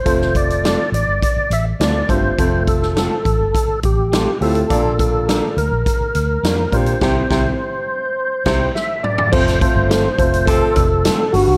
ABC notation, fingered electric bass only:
X:1
M:4/4
L:1/16
Q:1/4=104
K:F
V:1 name="Fingered electric bass" clef=bass
F,,,4- F,,, z A,,, G,,, z2 A,,,2 D,,2 G,,,2 | F,,,4- F,,, z A,,, G,,, z2 A,,,4 D,,2 | B,,,4- B,,, z D,, B,,, z2 D,,2 F,,2 B,,2 | C,,2 C,,2 z6 C,,2 z4 |
F,,,3 G,,,3 F,,,4 F,,,3 z G,,, C,, |]